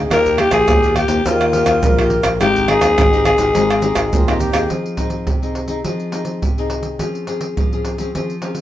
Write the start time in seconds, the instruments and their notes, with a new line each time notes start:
Already playing: flute G#4
0.10 fingered electric bass D#2, nylon-string guitar D#3 A#3 F4 G4, flute G4, alto saxophone A#4, pandeiro, tamborim, shaker, surdo
0.26 pandeiro, shaker, surdo
0.38 nylon-string guitar A#3 F4 G4, alto saxophone G4, pandeiro, tamborim
0.51 fingered electric bass A#1, alto saxophone G#4, pandeiro, tamborim, shaker, surdo
0.68 fingered electric bass D#2, nylon-string guitar A#2, pandeiro, tamborim, shaker, surdo
0.83 nylon-string guitar A#3 F4 G4, pandeiro, shaker
0.96 alto saxophone G4, pandeiro, tamborim
1.08 fingered electric bass D#2, nylon-string guitar A#3 F4 G4, pandeiro, shaker
1.26 fingered electric bass D#2, nylon-string guitar D#3 A#3 F4 G4, alto saxophone F4, flute A#4 C5, pandeiro, shaker, surdo
1.41 pandeiro, tamborim, shaker
1.53 nylon-string guitar A#3 F4 G4, pandeiro
1.66 fingered electric bass D#2, pandeiro, tamborim, shaker, surdo
1.83 fingered electric bass A#1, nylon-string guitar A#2, flute A#4, pandeiro, shaker, surdo
1.98 nylon-string guitar A#3 F4 G4, pandeiro, tamborim, shaker
2.10 pandeiro, surdo
2.23 fingered electric bass A#1, pandeiro, tamborim, shaker, surdo
2.40 fingered electric bass G#1, nylon-string guitar G#3 C4 D#4 G4, flute D#4, alto saxophone G4, pandeiro, tamborim, shaker, surdo
2.56 pandeiro, shaker, surdo
2.68 nylon-string guitar C4 D#4, alto saxophone G#4, pandeiro, tamborim
2.81 fingered electric bass D#2, pandeiro, tamborim, shaker, surdo
2.98 fingered electric bass G#1, nylon-string guitar D#3, pandeiro, tamborim, shaker, surdo
3.13 nylon-string guitar C4 D#4 G4, pandeiro, shaker
3.25 alto saxophone G#4, pandeiro, tamborim, shaker
3.38 fingered electric bass G#1, nylon-string guitar C4 D#4 G4, pandeiro, shaker
3.55 fingered electric bass G#1, nylon-string guitar G#3 C4 D#4 G4, pandeiro, shaker, surdo
3.70 pandeiro, tamborim, shaker
3.82 nylon-string guitar C4 D#4 G4, pandeiro, shaker
3.95 fingered electric bass G#1, pandeiro, tamborim, shaker, surdo
4.13 fingered electric bass D#2, nylon-string guitar D#3, flute F4, pandeiro, shaker, surdo
4.28 nylon-string guitar C4 D#4 G4, pandeiro, tamborim, shaker
4.40 flute G4, pandeiro, shaker, surdo
4.53 fingered electric bass D#2, nylon-string guitar C4 D#4 G#4, pandeiro, tamborim, shaker, surdo
4.70 nylon-string guitar F3, pandeiro, surdo
4.86 pandeiro
4.97 nylon-string guitar C4 D#4 G#4, pandeiro, surdo
5.10 pandeiro
5.27 nylon-string guitar C3, pandeiro, surdo
5.42 nylon-string guitar C4 D#4 G#4, pandeiro
5.55 pandeiro
5.68 nylon-string guitar C4 D#4 G#4, pandeiro
5.84 nylon-string guitar F3 C4 D#4 G#4, pandeiro, surdo
6.00 pandeiro
6.12 nylon-string guitar C4 D#4 G#4, pandeiro
6.25 pandeiro
6.42 nylon-string guitar C3, pandeiro, surdo
6.58 nylon-string guitar C4 D#4 G#4, pandeiro
6.70 pandeiro
6.83 pandeiro
6.99 nylon-string guitar F3 C4 C#4 G#4, pandeiro, surdo
7.15 pandeiro
7.27 nylon-string guitar C4 C#4 G#4, pandeiro
7.41 pandeiro
7.57 nylon-string guitar F3, pandeiro, surdo
7.73 nylon-string guitar C4 C#4 G#4, pandeiro
7.85 pandeiro
7.98 nylon-string guitar C4 C#4 G#4, pandeiro
8.15 nylon-string guitar F3 C4 C#4 G#4, pandeiro, surdo
8.30 pandeiro
8.42 nylon-string guitar C4 C#4 G#4, pandeiro
8.55 pandeiro